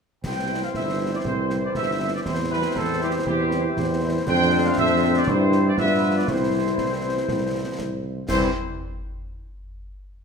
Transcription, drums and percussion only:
0.24 concert bass drum, snare, crash
0.74 concert bass drum, snare
1.25 concert bass drum
1.50 snare
1.75 concert bass drum, snare
2.26 concert bass drum, snare
2.76 concert bass drum, snare
3.26 concert bass drum
3.51 snare
3.77 concert bass drum, snare
4.27 concert bass drum, snare, crash
4.77 concert bass drum, snare
5.27 concert bass drum
5.52 snare
5.78 concert bass drum, snare
6.27 concert bass drum, snare
6.78 concert bass drum, snare
7.28 concert bass drum, snare
7.79 concert bass drum, snare
8.29 concert bass drum, snare, crash

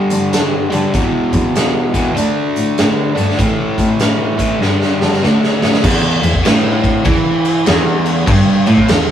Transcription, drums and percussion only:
0.10 closed hi-hat
0.33 snare, closed hi-hat
0.72 closed hi-hat
0.94 kick, closed hi-hat
1.33 kick, closed hi-hat
1.56 snare, closed hi-hat
1.94 kick, closed hi-hat
2.17 closed hi-hat
2.56 closed hi-hat
2.78 snare, closed hi-hat
3.17 closed hi-hat
3.29 snare
3.39 kick, closed hi-hat
3.78 kick, closed hi-hat
4.00 snare, closed hi-hat
4.39 kick, closed hi-hat
4.62 snare
4.81 snare
5.01 snare
5.12 snare
5.23 snare
5.43 snare
5.62 snare
5.74 snare
5.84 kick, crash
6.23 crash
6.34 kick
6.45 snare, crash
6.84 kick, crash
7.05 kick, crash
7.45 crash
7.66 snare, crash
8.06 crash
8.27 kick, crash
8.66 crash
8.77 kick
8.88 snare, crash

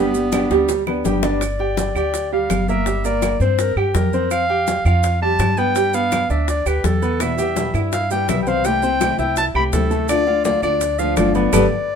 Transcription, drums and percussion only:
0.14 high bongo, high conga, maracas
0.32 high bongo, high conga, claves, maracas
0.51 high bongo, high conga, maracas
0.69 high bongo, high conga, maracas
0.87 low bongo, high conga, claves
1.05 low bongo, high conga, maracas
1.23 low bongo, maracas
1.41 high bongo, high conga, claves, maracas
1.59 high bongo, high conga
1.77 high bongo, high conga, maracas
1.95 high bongo, high conga, claves, maracas
2.14 high bongo, high conga, maracas
2.32 high conga
2.50 high bongo, low bongo, high conga, claves, maracas
2.68 high bongo, high conga, maracas
2.86 high bongo, high conga, maracas
3.04 high bongo, high conga, maracas
3.22 high bongo, high conga, claves, maracas
3.40 high bongo, high conga, maracas
3.59 high bongo, high conga, maracas
3.77 high conga, claves
3.95 high bongo, low bongo, high conga, maracas
4.13 high bongo, high conga, maracas
4.31 high bongo, high conga, claves, maracas
4.50 high bongo, high conga
4.67 high bongo, high conga, maracas
4.86 high bongo, high conga, claves, maracas
5.03 high bongo, high conga, maracas
5.22 high conga
5.39 high bongo, low bongo, high conga, claves, maracas
5.57 high bongo, maracas
5.75 high bongo, high conga, maracas
5.93 high bongo, high conga, maracas
6.12 high bongo, high conga, claves, maracas
6.30 high bongo, high conga, maracas
6.48 high bongo, high conga, maracas
6.66 high conga, claves, maracas
6.84 high bongo, low bongo, high conga, maracas
7.02 high bongo, high conga, maracas
7.20 high bongo, high conga, claves, maracas
7.38 high bongo, high conga, maracas
7.56 high bongo, high conga, maracas
7.74 high bongo, high conga, claves, maracas
7.92 high bongo, high conga, maracas
8.11 high conga, maracas
8.29 high bongo, low bongo, high conga, claves, maracas
8.47 high bongo, maracas
8.65 high bongo, high conga, maracas
8.82 high bongo, high conga, maracas
9.01 high bongo, high conga, claves, maracas
9.19 high bongo, high conga, maracas
9.36 high bongo, high conga, maracas
9.55 high conga, claves
9.73 high bongo, low bongo, high conga, maracas
9.91 high bongo, high conga, maracas
10.08 high bongo, high conga, claves, maracas
10.27 high bongo, high conga
10.45 high bongo, high conga, maracas
10.63 high bongo, claves, maracas
10.81 high bongo, high conga, maracas
10.99 high conga, maracas
11.17 high bongo, low bongo, high conga, claves, maracas
11.35 high bongo, high conga, maracas
11.53 low bongo, high conga, claves, maracas

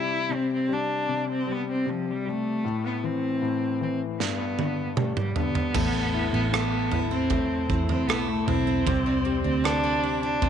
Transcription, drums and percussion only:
4.20 snare
4.59 high tom
4.97 mid tom
5.17 mid tom
5.36 floor tom
5.55 floor tom
5.75 kick, floor tom, crash
6.54 cross-stick
6.92 floor tom
7.30 kick, floor tom
7.70 kick
7.89 floor tom
8.10 cross-stick
8.48 floor tom
8.87 kick, floor tom
9.65 cross-stick
10.42 kick, floor tom

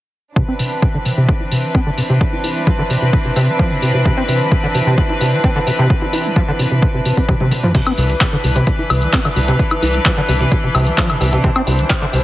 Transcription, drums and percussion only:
0.36 kick
0.59 open hi-hat
0.82 kick
1.05 open hi-hat
1.29 kick
1.52 open hi-hat
1.75 kick
1.98 open hi-hat
2.21 kick
2.44 open hi-hat
2.67 kick
2.90 open hi-hat
3.13 kick
3.36 open hi-hat
3.59 kick
3.82 open hi-hat
4.05 kick
4.28 open hi-hat
4.52 kick
4.75 open hi-hat
4.98 kick
5.21 open hi-hat
5.44 kick
5.67 open hi-hat
5.90 kick
6.13 open hi-hat
6.36 kick
6.59 open hi-hat
6.82 kick
7.05 open hi-hat
7.17 kick
7.28 kick, high tom
7.40 high tom
7.51 open hi-hat, mid tom
7.63 mid tom
7.75 kick, closed hi-hat, crash, cabasa
7.86 cabasa, high woodblock
7.98 open hi-hat
8.09 closed hi-hat, cabasa
8.21 kick, clap, closed hi-hat, cabasa
8.33 cabasa
8.44 open hi-hat
8.55 closed hi-hat, cabasa
8.67 kick, closed hi-hat, cabasa
8.79 cabasa
8.90 open hi-hat, high woodblock
9.02 closed hi-hat, cabasa
9.13 kick, clap, closed hi-hat, cabasa
9.25 cabasa, high woodblock
9.36 open hi-hat
9.48 closed hi-hat, cabasa
9.59 kick, closed hi-hat, cabasa
9.71 cabasa, high woodblock
9.82 open hi-hat
9.94 closed hi-hat, cabasa
10.05 kick, clap, closed hi-hat, cabasa
10.18 cabasa
10.29 open hi-hat
10.40 closed hi-hat, cabasa
10.51 kick, closed hi-hat, cabasa
10.63 cabasa
10.75 open hi-hat, high woodblock
10.87 closed hi-hat, cabasa
10.98 kick, clap, closed hi-hat, cabasa
11.10 cabasa, high woodblock
11.21 open hi-hat
11.32 closed hi-hat, cabasa
11.44 kick, closed hi-hat, cabasa
11.55 cabasa, high woodblock
11.67 open hi-hat
11.79 closed hi-hat, cabasa
11.90 kick, clap, closed hi-hat, cabasa
12.01 cabasa
12.13 open hi-hat

